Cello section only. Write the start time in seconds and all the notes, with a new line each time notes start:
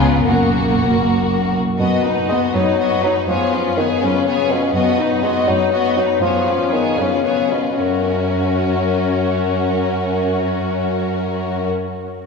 Already playing: C#3
0.27 F#2
1.80 F#2
2.55 F#2
3.29 F#2
4.02 F#2
4.74 F#2
5.48 F#2
6.22 F#2
6.98 F#2
7.78 F#2